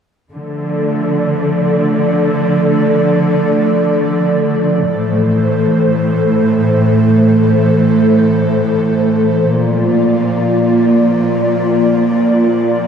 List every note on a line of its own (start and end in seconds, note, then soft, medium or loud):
0.32 4.85 D3 soft
0.32 4.86 F3 medium
0.32 4.86 A3 medium
0.32 4.86 A4 medium
0.32 4.86 D5 medium
4.89 9.43 A2 medium
4.89 9.47 E3 medium
4.89 9.43 A3 medium
4.89 9.43 A4 medium
4.89 9.47 C5 medium
9.47 12.87 A#2 medium
9.47 12.87 F3 medium
9.47 12.87 A#3 medium
9.47 12.87 F4 medium
9.47 12.87 D5 medium